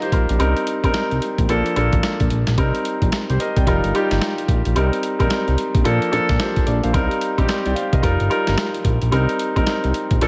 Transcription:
Already playing: G3 D#4 F4 A#4 D#5
0.02 G4 C5, closed hi-hat
0.12 A#1 F4 A#4, kick, closed hi-hat
0.29 A#1 D4 G4, closed hi-hat
0.39 C2 G3 C4 D#4 A#4, closed hi-hat
0.57 closed hi-hat
0.67 closed hi-hat
0.84 A#1 G3 C4 D#4 A#4, kick, closed hi-hat
0.94 snare, closed hi-hat
1.11 C2, closed hi-hat
1.22 closed hi-hat
1.38 A#1, kick, closed hi-hat
1.49 A#1 F3 A#3 D4 A4, closed hi-hat
1.66 closed hi-hat
1.76 A#1 F3 A#3 D4 A4, closed hi-hat
1.93 A1, kick, closed hi-hat
2.03 snare, closed hi-hat
2.20 A#1, kick, closed hi-hat
2.30 A#1, closed hi-hat
2.47 A#1, snare, closed hi-hat
2.58 C2 G3 C4 D#4 A#4, kick, closed hi-hat
2.75 closed hi-hat
2.85 closed hi-hat
3.02 A#1, kick, closed hi-hat
3.12 snare, closed hi-hat
3.30 C2 G4 C5, closed hi-hat
3.40 A#4 D#5, closed hi-hat
3.56 C2 D5 G5, kick, closed hi-hat
3.67 F1 G3 D#4 F4 A#4, kick, closed hi-hat
3.84 G1, closed hi-hat
3.94 G3 D#4 F4 G4, closed hi-hat
4.11 G1, snare, closed hi-hat
4.22 snare, closed hi-hat
4.38 closed hi-hat
4.48 A#1, kick, closed hi-hat
4.65 A#1, closed hi-hat
4.75 C2 G3 C4 D#4 A#4, closed hi-hat
4.93 closed hi-hat
5.03 closed hi-hat
5.19 A#1 G3 C4 D#4 A#4, kick, closed hi-hat
5.30 snare, closed hi-hat
5.48 C2, closed hi-hat
5.58 closed hi-hat
5.75 A#1, kick, closed hi-hat
5.84 A#2 F3 A#3 D4 A4, closed hi-hat
6.02 closed hi-hat
6.11 A#2 F3 A#3 D4 A4, closed hi-hat
6.29 A#2, kick, snare, closed hi-hat
6.39 G4 C5, snare, closed hi-hat
6.56 kick, closed hi-hat
6.66 A#1 A4 D5, closed hi-hat
6.84 A#1 C5 F5, closed hi-hat
6.93 C2 G3 C4 D#4 A#4, kick, closed hi-hat
7.11 closed hi-hat
7.21 closed hi-hat
7.38 A#1 G3 C4 D#4 G4, kick, closed hi-hat
7.48 A#4 D#5, snare, closed hi-hat
7.65 C2 D5 G5, closed hi-hat
7.75 C5 F5, closed hi-hat
7.92 C2 A#4 D#5, kick, closed hi-hat
8.02 F1 G3 D#4 F4 A#4, kick, closed hi-hat
8.20 G1, closed hi-hat
8.30 G3 D#4 F4 A#4, closed hi-hat
8.47 G1, snare, closed hi-hat
8.58 snare, closed hi-hat
8.74 closed hi-hat
8.85 A#1, kick, closed hi-hat
9.02 A#1, closed hi-hat
9.11 C2 G3 C4 D#4 A#4, closed hi-hat
9.29 closed hi-hat
9.39 closed hi-hat
9.56 A#1 G3 C4 D#4 A#4, kick, closed hi-hat
9.67 snare, closed hi-hat
9.84 C2, closed hi-hat
9.94 closed hi-hat
10.11 A#1, kick, closed hi-hat
10.21 A#1 F3 A#3 D4 A4, closed hi-hat

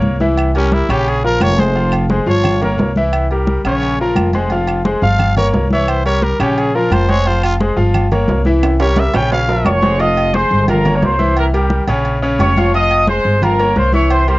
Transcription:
Already playing: A#3 A#4 C#5
0.02 C2, high conga
0.20 E3 E4 E5, high conga
0.37 high conga, low agogo, claves
0.55 G3 C#4 G4 A#4, high conga, low agogo
0.72 E4, high conga
0.89 A#1 C#3 C#4 G4 C#5, high conga, low agogo, claves
1.07 G#4, high conga, low agogo
1.24 F3 F4 A#4, high conga
1.40 F1 C#5, high conga, low agogo, claves
1.58 G#3 G#4 C5, high conga, low agogo
1.75 F3 F4 F5, low agogo
1.92 high conga, low agogo, claves
2.10 G#3 G#4 C5, high conga
2.26 G1 F3 F4 C#5 F5, high conga
2.44 high conga, low conga, low agogo, claves
2.62 A#3 A#4 C#5, high conga, low conga, low agogo
2.78 C2, high conga, low timbale
2.96 E3 E4 E5, high conga
3.13 high conga, low agogo, claves
3.31 G3 G4 A#4, high conga, low agogo
3.47 high conga
3.64 A#1 C#3 C#4 C#5, high conga, low agogo, claves
3.81 high conga, low agogo
3.98 F3 F4 A#4, high conga
4.15 F1, high conga, low agogo, claves
4.33 G#3 G#4 C5, high conga, low agogo
4.50 F3 F4 F5, high conga, low agogo
4.67 high conga, low agogo, claves
4.85 G#3 G#4 C5, high conga
5.02 G1 F3 F4 F5, high conga
5.19 high conga, low conga, low agogo, claves
5.36 A#3 A#4 C#5, high conga, low conga, low agogo
5.53 C2, high conga, low timbale
5.71 E3 E4 C#5 E5, high conga
5.88 C5, high conga, low agogo, claves
6.06 G3 G4 A#4 C#5, high conga, low agogo
6.22 A#4, high conga
6.39 A#1 C#3 C#4 G4 C#5, high conga, low agogo, claves
6.57 G#4, high conga, low agogo
6.74 F3 F4 A#4, high conga
6.91 F1 C5, high conga, low agogo, claves
7.09 G#3 G#4 C5 C#5, high conga, low agogo
7.26 F3 F4 C5 F5, high conga, low agogo
7.43 F4, high conga, low agogo, claves
7.60 G#3 G#4 C5, high conga
7.76 G1 F3 F4 F5, high conga
7.94 high conga, low conga, low agogo, claves
8.11 A#3 A#4 C#5, high conga, low conga, low agogo
8.28 C2, high conga, low timbale
8.45 E3 E4 E5, high conga
8.62 high conga, high timbale, low agogo, claves
8.79 G3 G4 A#4 C#5, high conga, high timbale, low agogo
8.96 E5, high conga, high timbale
9.14 A#1 C#3 C#4 C#5 G5, high conga, low timbale, low agogo, claves
9.31 F5, high conga, low timbale, low agogo
9.47 F3 F4 A#4, high conga, low timbale
9.65 F1 C#5 C#6, high conga, low timbale, low agogo, claves
9.82 G#3 G#4 C5, high conga, low timbale, low agogo
9.99 F3 F4 D#5 F5 D#6, high conga, low agogo
10.17 high conga, low agogo
10.34 G#3 G#4 C5 C6, high conga
10.51 G1, high conga
10.68 F3 F4 A#4 F5 A#5, high conga, low conga, low agogo
10.85 A#3 A#4 C#5, high conga, low conga, low agogo
10.96 C#5
11.02 C2 C5 C6, high conga, low timbale
11.19 E3 E4 E5, high conga
11.37 A#4 A#5, low agogo
11.53 G3 G4 A#4 G5, high conga, low agogo
11.70 high conga
11.87 A#1 C#3 C#4 C#5, high conga, low agogo
12.05 high conga, low agogo
12.22 C#3 C#4 C#5, high conga
12.39 F1 C#5 C#6, high conga, low timbale, low agogo
12.57 F3 F4 F5, high conga, low agogo
12.74 F3 F4 D#5 F5 D#6, high conga, low agogo
12.91 high conga, low agogo
13.07 G#3 G#4 C5 C6, high conga
13.25 G1, high conga
13.42 F3 F4 A#4 F5 A#5, high conga, low conga, low agogo
13.59 A#3 A#4 C#5, high conga, low agogo
13.76 C2 C5 C6, high conga
13.92 E3 E4 C#5 E5 C#6, high conga
14.10 C5 C6, high conga, low agogo
14.27 G3 G4 A#4 C5 C6, high conga, low agogo

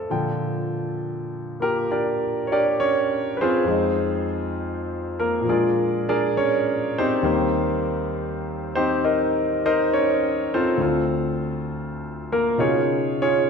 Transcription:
Already playing: G4 A4 D5
0.10 A#2 D3 F3 G5
1.60 A#3 F4 G4 A#4
1.91 D4 G4 A#4 D5
2.47 C#5
2.52 D4 G4 A#4 D5
2.80 C#4 C#5
3.37 B4
3.41 C4 F4 G#4 C5
3.65 F2 F3 G#3
3.70 D#4
5.20 A#3 A#4
5.41 A#2 F3
5.48 G#3 D4 F4 G#4 A#4 D5
6.09 D4 G#4 A#4 D5
6.37 C#4 C#5
6.98 C4 D#4 G4 C5
7.23 D#2 D#3 G3 A#3
8.75 C4 D#4 G4 C5
9.04 D#4 A#4 C5 D#5
9.66 D#4 A#4 C5 D#5
9.93 C#4 C#5
10.54 C4 F4 A4 C5
10.77 D2 D3 C4
10.82 F4
12.32 A#3 A#4
12.58 B2 C#3 C#4 D#4 F4 G#4 C#5
13.22 C#4 F4 G#4 C#5

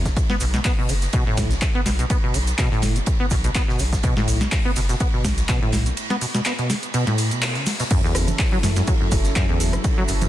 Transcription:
Already playing: F#1
0.05 G#2, kick, snare, closed hi-hat, cabasa
0.17 kick, closed hi-hat, ride, cabasa
0.29 B3, snare
0.40 B1 B2, open hi-hat, ride, cabasa
0.54 B2, snare, closed hi-hat, ride, cabasa
0.65 B3, kick, snare, clap, closed hi-hat, open hi-hat, cabasa
0.78 B2
0.89 F#1 D3, open hi-hat, ride, cabasa
1.02 snare, closed hi-hat, cabasa
1.13 B2, kick, closed hi-hat, ride, cabasa
1.26 A2
1.37 B1, kick, snare, open hi-hat, ride, cabasa
1.51 C#3, snare, closed hi-hat, cabasa
1.61 kick, snare, clap, closed hi-hat, ride, cabasa
1.75 B3, ride
1.86 B1 B2, snare, open hi-hat, ride, cabasa
1.99 B2, closed hi-hat, cabasa
2.10 B3, kick, closed hi-hat, ride, cabasa
2.23 B2
2.34 B1 D3, open hi-hat, ride, cabasa
2.47 closed hi-hat, ride, cabasa
2.58 B2, kick, snare, clap, closed hi-hat, ride, cabasa
2.72 A2, snare
2.82 F#1, snare, open hi-hat, ride, cabasa
2.96 C#3, closed hi-hat, cabasa
3.06 kick, closed hi-hat, ride, cabasa
3.20 B3
3.30 B1 B2, kick, open hi-hat, ride, cabasa
3.44 B2, closed hi-hat, cabasa
3.55 B3, kick, snare, clap, closed hi-hat, ride, cabasa
3.68 B2, snare
3.79 B1 D3, open hi-hat, ride, cabasa
3.93 kick, snare, closed hi-hat, cabasa
4.03 B2, kick, closed hi-hat, ride, cabasa
4.17 A2, snare
4.28 B1, open hi-hat, ride, cabasa
4.41 C#3, snare, closed hi-hat, ride, cabasa
4.51 kick, snare, clap, closed hi-hat, open hi-hat, cabasa
4.65 B3
4.76 F#1 B2, open hi-hat, ride, cabasa
4.89 B2, snare, closed hi-hat, cabasa
5.00 B3, kick, closed hi-hat, ride, cabasa
5.14 B2
5.25 B1 D3, kick, snare, open hi-hat, ride, cabasa
5.38 snare, closed hi-hat, cabasa
5.49 B2, kick, snare, clap, closed hi-hat, ride, cabasa
5.62 A2, ride
5.72 B1, snare, open hi-hat, ride, cabasa
5.86 C#3, closed hi-hat, cabasa
5.97 closed hi-hat, ride, cabasa
6.10 B3, snare, closed hi-hat
6.21 B2, open hi-hat, ride, cabasa
6.34 B2, snare, closed hi-hat, ride, cabasa
6.45 B3, snare, clap, closed hi-hat, ride, cabasa
6.58 B2, snare, closed hi-hat
6.69 D3, snare, open hi-hat, ride, cabasa
6.83 closed hi-hat, cabasa
6.94 B2, closed hi-hat, ride, cabasa
7.07 A2, snare, closed hi-hat
7.18 open hi-hat, ride, cabasa
7.31 B2, closed hi-hat, cabasa
7.42 snare, clap, open hi-hat, ride, cabasa
7.55 C#3, snare, closed hi-hat
7.66 B3, snare, open hi-hat, cabasa
7.80 B2, snare, closed hi-hat, open hi-hat, cabasa
7.90 F#2 F#3 C#4 E4 A4, kick, closed hi-hat, ride, crash, cabasa
8.04 E2, snare
8.15 F#1, cross-stick, open hi-hat, ride, cabasa
8.28 G#2, closed hi-hat, ride, low conga, cabasa
8.39 kick, snare, clap, open hi-hat, cabasa
8.52 F#3
8.63 F#2, snare, open hi-hat, ride, low conga, cabasa
8.76 F#2, snare, closed hi-hat, cabasa
8.87 F#3, kick, closed hi-hat, ride, cabasa
9.01 F#2
9.11 F#1 A2, kick, open hi-hat, ride, cabasa
9.24 snare, closed hi-hat, cabasa
9.36 F#2, kick, snare, clap, closed hi-hat, ride, cabasa
9.49 E2, ride
9.60 F#1, open hi-hat, ride, cabasa
9.73 G#2, cross-stick, closed hi-hat, cabasa
9.84 kick, closed hi-hat, ride, cabasa
9.97 F#3
10.08 F#1 F#2, open hi-hat, ride, cabasa
10.21 F#2, closed hi-hat, ride, low conga, cabasa

